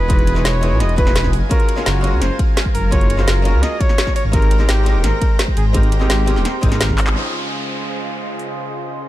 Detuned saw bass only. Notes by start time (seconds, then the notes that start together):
Already playing: E1
0.45 E1
0.72 B1
0.81 E1
1.34 F#1
1.87 F#1
2.13 C#2
2.22 F#1
2.75 F#1
3.28 F#1
3.54 C#2
4.25 G#1
4.69 G#1
4.95 D#1
5.04 G#1
5.57 G#1
6.10 G#1
6.36 D#1
6.63 G#1
7.07 G#1